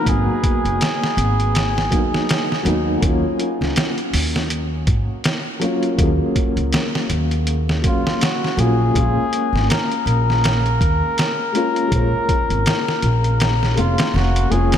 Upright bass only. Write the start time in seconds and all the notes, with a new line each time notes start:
0.06 G#1
0.65 F#1
1.17 G#1
2.65 D#2
3.02 D#2
3.61 C#2
4.13 D#2
4.87 G#2
5.98 D#2
6.57 C#2
7.10 D#2
8.57 A#1
8.95 A#1
9.53 G#1
10.06 A#1
10.81 D#2
11.92 A#1
12.50 G#1
13.03 A#1
13.78 F1
14.14 F1
14.51 F1